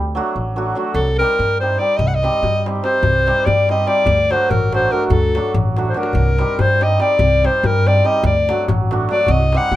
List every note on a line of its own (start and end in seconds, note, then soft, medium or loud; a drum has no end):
0.00 0.18 D2 loud
0.15 0.55 F#3 medium
0.15 0.29 A3 medium
0.15 0.29 D4 medium
0.15 0.29 F#4 medium
0.36 0.71 A1 medium
0.56 0.74 F#3 medium
0.56 0.69 A3 medium
0.56 0.69 D4 medium
0.56 0.70 F#4 medium
0.75 1.00 F#3 medium
0.75 0.89 A3 medium
0.75 0.89 D4 medium
0.75 0.89 F#4 medium
0.94 1.21 C2 loud
0.94 1.18 A4 medium
1.18 1.59 G3 medium
1.18 1.33 C4 medium
1.18 1.33 D#4 medium
1.18 1.33 G4 medium
1.18 1.58 A#4 loud
1.39 1.75 G2 medium
1.60 1.77 G3 medium
1.60 1.74 C4 soft
1.60 1.74 D#4 medium
1.60 1.74 G4 medium
1.60 1.80 C5 medium
1.78 2.04 G3 medium
1.78 1.92 C4 medium
1.78 1.92 D#4 medium
1.78 1.92 G4 medium
1.78 1.98 D5 medium
1.96 2.26 C2 medium
1.96 2.09 D#5 medium
1.96 darbuka dum medium
2.08 2.16 F#5 medium
2.15 2.65 D#5 loud
2.23 2.65 G3 medium
2.23 2.37 C4 medium
2.23 2.37 D#4 medium
2.23 2.37 G4 medium
2.23 darbuka tek medium
2.34 darbuka tek soft
2.43 2.79 G2 medium
2.43 darbuka dum medium
2.66 2.82 G3 medium
2.66 2.78 C4 medium
2.66 2.79 D#4 medium
2.66 2.79 G4 medium
2.66 darbuka tek medium
2.75 darbuka tek soft
2.83 3.25 G3 medium
2.83 2.96 C4 medium
2.83 2.97 D#4 medium
2.83 2.97 G4 medium
2.83 3.47 C5 medium
2.83 darbuka tek medium
2.94 darbuka tek soft
3.03 3.29 C2 medium
3.03 darbuka dum medium
3.26 3.68 G3 medium
3.26 3.40 C4 medium
3.26 3.41 D#4 medium
3.26 3.41 G4 medium
3.26 darbuka tek medium
3.38 darbuka tek soft
3.45 3.83 G2 medium
3.45 3.69 D5 loud
3.45 darbuka dum loud
3.69 3.85 G3 medium
3.69 3.82 C4 medium
3.69 3.82 D#4 medium
3.69 3.82 G4 medium
3.69 3.89 D#5 medium
3.69 darbuka tek medium
3.79 darbuka tek soft
3.86 4.12 G3 medium
3.86 4.00 C4 medium
3.86 4.00 D#4 medium
3.86 4.00 G4 medium
3.86 4.33 D5 loud
3.86 darbuka tek medium
3.96 darbuka tek soft
4.06 4.33 D2 loud
4.06 darbuka dum medium
4.30 4.71 F#3 medium
4.30 4.44 A3 medium
4.30 4.45 D4 medium
4.30 4.45 F#4 medium
4.30 4.51 C5 medium
4.30 darbuka tek medium
4.40 darbuka tek soft
4.50 4.87 A1 medium
4.50 4.73 A#4 medium
4.50 darbuka dum medium
4.73 4.90 F#3 medium
4.73 4.86 A3 medium
4.73 4.86 D4 medium
4.73 4.86 F#4 medium
4.73 4.93 C5 medium
4.73 darbuka tek medium
4.82 darbuka tek soft
4.91 5.34 F#3 medium
4.91 5.04 A3 medium
4.91 5.04 D4 medium
4.91 5.05 F#4 medium
4.91 5.05 A#4 medium
5.01 darbuka tek soft
5.05 5.12 A#4 medium
5.10 5.37 D2 medium
5.10 5.55 A4 medium
5.10 darbuka dum medium
5.23 darbuka tek soft
5.35 5.76 F#3 medium
5.35 5.49 A3 medium
5.35 5.49 D4 medium
5.35 5.49 F#4 medium
5.35 darbuka tek medium
5.44 darbuka tek soft
5.54 5.91 A1 medium
5.54 darbuka dum medium
5.66 darbuka tek soft
5.77 5.94 F#3 medium
5.77 5.90 A3 medium
5.77 5.90 D4 medium
5.77 5.90 F#4 medium
5.77 darbuka tek medium
5.85 darbuka dum soft
5.89 5.99 C5 medium
5.95 6.20 F#3 medium
5.95 6.08 A3 medium
5.95 6.09 D4 medium
5.95 6.09 F#4 medium
5.95 6.62 A#4 medium
5.95 darbuka tek medium
6.03 darbuka tek medium
6.13 6.42 C2 medium
6.13 darbuka dum medium
6.38 6.79 G3 medium
6.38 6.52 C4 medium
6.38 6.53 D#4 medium
6.38 6.53 G4 medium
6.38 darbuka tek medium
6.49 darbuka tek soft
6.59 6.95 G2 medium
6.59 6.85 C5 medium
6.59 darbuka dum loud
6.80 6.98 G3 medium
6.80 6.93 C4 soft
6.80 6.94 D#4 medium
6.80 6.94 G4 medium
6.80 7.03 D#5 medium
6.80 darbuka tek medium
6.91 darbuka tek soft
7.00 7.42 G3 medium
7.00 7.13 C4 medium
7.00 7.13 D#4 medium
7.00 7.13 G4 medium
7.00 7.47 D5 loud
7.00 darbuka tek medium
7.10 darbuka tek soft
7.19 7.46 C2 medium
7.19 darbuka dum medium
7.43 7.84 G3 medium
7.43 7.57 C4 medium
7.43 7.57 D#4 medium
7.43 7.57 G4 medium
7.43 7.67 C5 medium
7.43 darbuka tek medium
7.54 darbuka tek soft
7.63 7.99 G2 medium
7.63 7.89 A#4 loud
7.63 darbuka dum loud
7.86 8.03 G3 soft
7.86 7.99 C4 soft
7.86 7.99 D#4 medium
7.86 7.99 G4 medium
7.86 8.08 D5 medium
7.86 darbuka tek medium
7.96 darbuka tek soft
8.04 8.29 G3 medium
8.04 8.17 C4 medium
8.04 8.17 D#4 medium
8.04 8.17 G4 medium
8.04 8.24 D#5 medium
8.04 darbuka tek medium
8.15 darbuka tek soft
8.23 8.50 D2 loud
8.23 8.67 D5 medium
8.23 darbuka dum medium
8.49 8.90 F#3 medium
8.49 8.62 A3 medium
8.49 8.62 D4 medium
8.49 8.62 F#4 medium
8.49 darbuka tek medium
8.68 9.05 A1 medium
8.68 darbuka dum loud
8.91 9.09 F#3 medium
8.91 9.03 A3 medium
8.91 9.04 D4 medium
8.91 9.04 F#4 medium
8.91 darbuka tek medium
9.00 darbuka tek soft
9.09 9.33 F#3 medium
9.09 9.22 A3 medium
9.09 9.23 D4 medium
9.09 9.23 F#4 medium
9.09 9.33 D5 medium
9.09 darbuka tek medium
9.18 darbuka tek soft
9.26 9.55 C2 loud
9.26 darbuka dum medium
9.31 9.58 D#5 medium
9.40 darbuka tek soft
9.52 9.76 G3 medium
9.52 9.67 C4 medium
9.52 9.66 D#4 medium
9.52 9.67 G4 medium
9.52 darbuka tek medium
9.57 9.76 F#5 loud
9.62 darbuka tek soft
9.72 9.76 G2 medium
9.72 darbuka dum medium